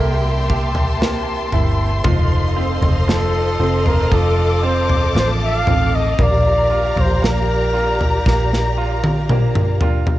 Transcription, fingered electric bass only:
0, 0, Header, 1, 2, 480
1, 0, Start_track
1, 0, Key_signature, -2, "major"
1, 0, Tempo, 1034483
1, 951, Time_signature, 4, 2, 24, 8
1, 4728, End_track
2, 0, Start_track
2, 0, Title_t, "Fingered electric bass"
2, 0, Program_c, 0, 33
2, 0, Note_on_c, 0, 36, 119
2, 691, Note_off_c, 0, 36, 0
2, 706, Note_on_c, 0, 31, 103
2, 932, Note_off_c, 0, 31, 0
2, 950, Note_on_c, 0, 29, 100
2, 1292, Note_off_c, 0, 29, 0
2, 1306, Note_on_c, 0, 29, 100
2, 1650, Note_off_c, 0, 29, 0
2, 1669, Note_on_c, 0, 29, 101
2, 1893, Note_off_c, 0, 29, 0
2, 1911, Note_on_c, 0, 29, 114
2, 2373, Note_off_c, 0, 29, 0
2, 2389, Note_on_c, 0, 33, 90
2, 2613, Note_off_c, 0, 33, 0
2, 2632, Note_on_c, 0, 33, 106
2, 2855, Note_off_c, 0, 33, 0
2, 2870, Note_on_c, 0, 34, 101
2, 3212, Note_off_c, 0, 34, 0
2, 3230, Note_on_c, 0, 34, 107
2, 3342, Note_off_c, 0, 34, 0
2, 3351, Note_on_c, 0, 34, 97
2, 3813, Note_off_c, 0, 34, 0
2, 3833, Note_on_c, 0, 34, 95
2, 4554, Note_off_c, 0, 34, 0
2, 4554, Note_on_c, 0, 29, 98
2, 4728, Note_off_c, 0, 29, 0
2, 4728, End_track
0, 0, End_of_file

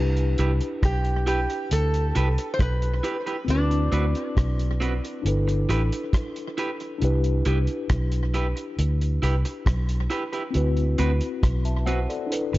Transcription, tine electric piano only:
0, 0, Header, 1, 2, 480
1, 0, Start_track
1, 0, Tempo, 883392
1, 1890, Time_signature, 4, 2, 24, 8
1, 6835, End_track
2, 0, Start_track
2, 0, Title_t, "Tine electric piano"
2, 0, Program_c, 0, 4
2, 0, Note_on_c, 0, 62, 76
2, 0, Note_on_c, 0, 64, 68
2, 0, Note_on_c, 0, 67, 70
2, 0, Note_on_c, 0, 71, 83
2, 74, Control_c, 0, 64, 127
2, 1862, Note_off_c, 0, 62, 0
2, 1867, Note_off_c, 0, 64, 0
2, 1872, Note_on_c, 0, 60, 65
2, 1873, Note_off_c, 0, 67, 0
2, 1878, Note_off_c, 0, 71, 0
2, 1885, Note_on_c, 0, 64, 61
2, 1894, Note_on_c, 0, 66, 55
2, 1897, Control_c, 0, 64, 0
2, 1906, Note_on_c, 0, 70, 52
2, 1934, Note_off_c, 0, 70, 0
2, 1942, Note_on_c, 0, 71, 74
2, 1992, Control_c, 0, 64, 127
2, 2822, Note_off_c, 0, 60, 0
2, 2828, Note_off_c, 0, 64, 0
2, 2833, Note_off_c, 0, 66, 0
2, 2836, Note_on_c, 0, 62, 73
2, 2847, Note_on_c, 0, 64, 72
2, 2856, Control_c, 0, 64, 0
2, 2857, Note_off_c, 0, 71, 0
2, 2857, Note_on_c, 0, 69, 68
2, 2868, Note_on_c, 0, 71, 79
2, 2945, Control_c, 0, 64, 127
2, 3783, Note_off_c, 0, 62, 0
2, 3789, Note_off_c, 0, 64, 0
2, 3794, Note_off_c, 0, 69, 0
2, 3795, Note_on_c, 0, 62, 75
2, 3800, Note_off_c, 0, 71, 0
2, 3807, Note_on_c, 0, 64, 78
2, 3817, Control_c, 0, 64, 0
2, 3819, Note_on_c, 0, 67, 68
2, 3829, Note_on_c, 0, 71, 92
2, 3909, Control_c, 0, 64, 127
2, 5700, Note_off_c, 0, 62, 0
2, 5706, Note_off_c, 0, 64, 0
2, 5708, Note_on_c, 0, 60, 77
2, 5712, Note_off_c, 0, 67, 0
2, 5717, Note_off_c, 0, 71, 0
2, 5720, Note_on_c, 0, 64, 68
2, 5730, Note_on_c, 0, 66, 74
2, 5735, Control_c, 0, 64, 0
2, 5742, Note_on_c, 0, 71, 85
2, 5818, Control_c, 0, 64, 127
2, 5971, Note_off_c, 0, 71, 0
2, 6330, Note_on_c, 0, 76, 53
2, 6330, Note_on_c, 0, 81, 60
2, 6442, Note_on_c, 0, 78, 60
2, 6443, Note_off_c, 0, 76, 0
2, 6443, Note_off_c, 0, 81, 0
2, 6447, Note_on_c, 0, 72, 55
2, 6562, Note_off_c, 0, 78, 0
2, 6564, Note_off_c, 0, 72, 0
2, 6571, Note_on_c, 0, 69, 56
2, 6571, Note_on_c, 0, 74, 65
2, 6659, Note_off_c, 0, 60, 0
2, 6665, Note_off_c, 0, 64, 0
2, 6665, Note_on_c, 0, 62, 77
2, 6670, Note_off_c, 0, 66, 0
2, 6676, Note_on_c, 0, 64, 70
2, 6680, Note_off_c, 0, 69, 0
2, 6686, Note_on_c, 0, 69, 70
2, 6696, Control_c, 0, 64, 0
2, 6698, Note_on_c, 0, 71, 81
2, 6799, Note_off_c, 0, 74, 0
2, 6804, Control_c, 0, 64, 127
2, 6835, Note_off_c, 0, 62, 0
2, 6835, Note_off_c, 0, 64, 0
2, 6835, Note_off_c, 0, 69, 0
2, 6835, Note_off_c, 0, 71, 0
2, 6835, End_track
0, 0, End_of_file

